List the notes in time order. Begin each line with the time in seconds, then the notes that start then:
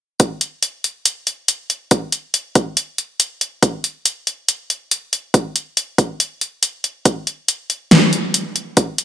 0.20 kick, closed hi-hat
0.41 closed hi-hat
0.63 closed hi-hat
0.84 closed hi-hat
1.05 closed hi-hat
1.27 closed hi-hat
1.48 closed hi-hat
1.70 closed hi-hat
1.91 kick, closed hi-hat
2.12 closed hi-hat
2.34 closed hi-hat
2.55 kick, closed hi-hat
2.77 closed hi-hat
2.98 closed hi-hat
3.20 closed hi-hat
3.41 closed hi-hat
3.63 kick, closed hi-hat
3.84 closed hi-hat
4.06 closed hi-hat
4.27 closed hi-hat
4.49 closed hi-hat
4.70 closed hi-hat
4.91 closed hi-hat
5.13 closed hi-hat
5.34 kick, closed hi-hat
5.56 closed hi-hat
5.77 closed hi-hat
5.98 kick, closed hi-hat
6.20 closed hi-hat
6.41 closed hi-hat
6.63 closed hi-hat
6.84 closed hi-hat
7.05 kick, closed hi-hat
7.27 closed hi-hat
7.48 closed hi-hat
7.70 closed hi-hat
7.91 snare, closed hi-hat
8.13 closed hi-hat
8.34 closed hi-hat
8.56 closed hi-hat
8.77 kick, closed hi-hat
8.98 closed hi-hat